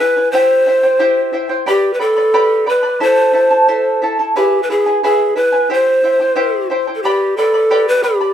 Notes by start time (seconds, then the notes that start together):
0.00 E4 B4 E5 G#5
0.17 E4 B4 G#5
0.32 E4 G4 C5 E5 G5
0.67 E4 C5 E5 G5
0.83 E4 C5 G5
0.99 E4 G4 C5 E5 G5
1.33 E4 C5 E5 G5
1.49 E4 C5 G5
1.66 G4 B4 D5 G5 B5
1.94 B4
1.99 A4 B4 D5 G5 B5
2.16 B4 D5 B5
2.34 G4 B4 D5 G5 B5
2.66 B4 D5 G5 B5
2.83 B4 D5 B5
3.00 E4 A4 C5 E5 A5
3.33 E4 A4 E5 A5
3.50 E4 A4 A5
3.68 E4 A4 C5 E5 A5
4.02 E4 A4 E5 A5
4.19 E4 A4 A5
4.36 E4 G4 G#4 B4 E5 G#5
4.63 B4
4.70 E4 G#4 B4 E5 G#5
4.86 E4 B4 G#5
5.03 E4 G#4 B4 E5 G#5
5.36 E4 B4 E5 G#5
5.52 E4 B4 G#5
5.70 E4 G4 C5 E5 G5
6.04 E4 C5 E5 G5
6.20 E4 C5 G5
6.35 E4 G4 C5 E5 G5
6.70 E4 C5 E5 G5
6.87 E4 C5 G5
6.95 A4
7.03 G4 B4 D5 G5 B5
7.37 A4 B4 D5 G5 B5
7.54 B4 D5 B5
7.70 G4 B4 D5 G5 B5
7.88 B4
8.03 G4 B4 D5 G5 B5
8.21 B4 D5 B5